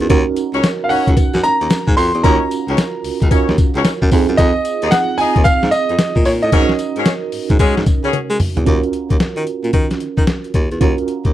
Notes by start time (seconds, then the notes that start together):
Already playing: C#4 D#4 F#4 A#4
0.00 E2, closed hi-hat
0.09 D#2 C#4 D#4 F#4 A#4, kick, closed hi-hat, tambourine, cowbell
0.36 closed hi-hat, tambourine
0.53 C#2 C#4 D#4 F#4 C#5, closed hi-hat
0.63 snare, closed hi-hat, tambourine, cowbell
0.84 F5
0.89 C#2 C#4 D#4 F#4 C#5 F#5, open hi-hat
1.07 C#2, kick, closed hi-hat
1.17 kick, closed hi-hat, tambourine, cowbell
1.34 F#2, snare
1.44 A#5, closed hi-hat, tambourine
1.61 D#2, closed hi-hat
1.70 snare, closed hi-hat, tambourine, cowbell
1.87 G#2, kick
1.97 F2 C6, open hi-hat, tambourine
2.14 E2, closed hi-hat
2.24 D#2 C#4 D#4 F4 F#4 A#4 C#5 A#5, kick, closed hi-hat, tambourine, cowbell
2.51 closed hi-hat, tambourine
2.68 C#2 C#4 D#4 F#4 C#5, closed hi-hat
2.77 snare, closed hi-hat, tambourine, cowbell
3.04 C#2, open hi-hat
3.22 C#2, kick, closed hi-hat
3.31 C#4 D#4 F4 F#4 A#4 C#5, kick, closed hi-hat, tambourine, cowbell
3.48 D#2, snare
3.58 kick, closed hi-hat, tambourine
3.75 C#2 C#4 D#4 F#4 C#5, closed hi-hat
3.84 snare, closed hi-hat, tambourine, cowbell
4.02 F#2, kick
4.11 F2 C4 D#4 F4 G#4, kick, open hi-hat, tambourine
4.29 F#2, closed hi-hat
4.37 F2 D#5, kick, closed hi-hat, tambourine, cowbell
4.65 closed hi-hat, tambourine
4.82 D#2 D#4 F4 G#4 D#5, closed hi-hat
4.91 F#5, snare, closed hi-hat, tambourine, cowbell
5.18 D#2 D#4 F4 G#4 D#5 G#5, open hi-hat
5.36 D#2, kick, closed hi-hat
5.44 F5, kick, closed hi-hat, tambourine, cowbell
5.62 G#2, snare
5.71 D#5, closed hi-hat, tambourine
5.89 F2, closed hi-hat
5.98 snare, closed hi-hat, tambourine, cowbell
6.16 A#2, kick
6.25 A#2 C#5, open hi-hat, tambourine
6.42 A2 D#5, closed hi-hat
6.52 G#2 C4 C#4 D#4 F#4 G#4 A#4 C#5, kick, closed hi-hat, tambourine, cowbell
6.59 C#4
6.69 snare
6.79 closed hi-hat, tambourine
6.96 G#2 C#4 F#4 G#4 C#5, closed hi-hat
7.05 snare, closed hi-hat, tambourine, cowbell
7.32 G#2, open hi-hat
7.50 G#2, kick, closed hi-hat
7.59 G#3 C#4 F#4 G#4 C#5, kick, closed hi-hat, tambourine, cowbell
7.77 G#2, snare
7.86 kick, closed hi-hat, tambourine
8.03 C#3 C#4 F#4 G#4 C#5, closed hi-hat
8.13 closed hi-hat, high tom, cowbell
8.30 G#3
8.40 mid tom, open hi-hat
8.57 E2, closed hi-hat, floor tom
8.65 D#2 C#4 F4 F#4 A#4, kick, closed hi-hat, cowbell
8.83 closed hi-hat
8.93 closed hi-hat
9.10 D#2, kick, closed hi-hat
9.20 D#3, snare, closed hi-hat, cowbell
9.36 D#3, closed hi-hat
9.47 closed hi-hat
9.64 A#2, closed hi-hat
9.73 D#3, kick, closed hi-hat, cowbell
9.91 snare, closed hi-hat
10.00 D#3, closed hi-hat
10.17 D#3, kick, closed hi-hat
10.27 snare, closed hi-hat, cowbell
10.44 closed hi-hat
10.54 D#2, kick, closed hi-hat
10.71 E2, closed hi-hat
10.81 D#2 C#4 F4 F#4 A#4, kick, closed hi-hat, cowbell
10.98 closed hi-hat
11.08 closed hi-hat
11.25 D#2, kick, closed hi-hat